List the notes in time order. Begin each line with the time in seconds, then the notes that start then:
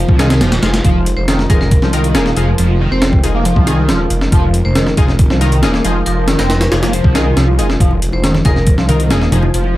Already playing: F3 G#3 D#4 F4 C5
0.09 C2, kick
0.19 D#3 D#4 F4 G#4, snare, closed hi-hat
0.30 snare, closed hi-hat
0.41 D#1 F3, snare, closed hi-hat
0.52 snare, closed hi-hat
0.63 F1 D#4 F4 G#4, snare, closed hi-hat
0.74 snare, closed hi-hat
0.84 F1 F3 A#4, kick, closed hi-hat
1.06 closed hi-hat
1.17 F1 C5
1.28 D#3, snare, closed hi-hat
1.39 snare
1.50 F1 D#4 F4 G#4 A#4, kick, closed hi-hat
1.61 A#4, snare
1.71 kick, closed hi-hat
1.82 C2 F3, snare
1.93 D#3 D#4 F4 A#4, closed hi-hat
2.04 closed hi-hat
2.15 D#1 A#3 D#4 F4 G#4, snare, closed hi-hat
2.26 snare
2.37 F1 F3 D#4 F4 G#4, closed hi-hat
2.58 F1 F3, closed hi-hat
2.80 D#3
2.91 F1 C4 C5
3.02 C5, snare, closed hi-hat
3.13 kick
3.23 F1 D#4 F4 G#4, closed hi-hat
3.34 A#3
3.45 F3, closed hi-hat
3.56 C2, kick
3.67 D#3 D#4 F4 G#4, closed hi-hat
3.89 D#1 F3, snare, closed hi-hat
4.10 F1, closed hi-hat
4.21 snare
4.32 F1 F3, kick, closed hi-hat
4.54 closed hi-hat
4.65 F1 C5
4.75 D#3, snare, closed hi-hat
4.87 snare
4.97 F1 D#4 F4 G#4, kick, closed hi-hat
5.09 snare
5.19 kick, closed hi-hat
5.30 C2 F3, snare
5.41 D#3 D#4 F4 A#4, closed hi-hat
5.52 closed hi-hat
5.63 D#1 A#3 D#4 F4 G#4, snare, closed hi-hat
5.74 snare
5.84 F1 F3 D#4 F4 G#4, closed hi-hat
6.06 F1 F3 A#4, closed hi-hat
6.28 D#3, snare, closed hi-hat
6.39 F1 C4 A#4, snare, closed hi-hat
6.50 A#4, snare, closed hi-hat
6.61 snare, closed hi-hat
6.72 F1 D#4 F4 G#4, snare, closed hi-hat
6.82 A#3, snare, closed hi-hat
6.93 F3, closed hi-hat, swell
7.04 C2, kick
7.15 D#3 D#4 F4 G#4, snare, closed hi-hat
7.37 C2 F3, snare, closed hi-hat
7.58 F1 D#4 F4 G#4, closed hi-hat
7.70 snare
7.80 F1 F3 C5, kick, closed hi-hat
7.91 high bongo
8.02 closed hi-hat
8.12 F1 C5, high bongo
8.23 D#3, snare, closed hi-hat
8.34 snare, high conga
8.45 F1 D#4 F4 G#4 A#4, kick, closed hi-hat, low conga
8.56 A#4, snare
8.67 kick, closed hi-hat
8.78 C2 F3, snare
8.89 D#3 D#4 F4 A#4, closed hi-hat, high conga, low conga
9.00 closed hi-hat
9.10 D#1 A#3 D#4 F4 G#4, snare, closed hi-hat, high bongo
9.22 snare
9.32 F1 F3 D#4 F4 G#4, closed hi-hat, low conga
9.42 high bongo, high conga
9.54 F1 F3, closed hi-hat
9.64 high bongo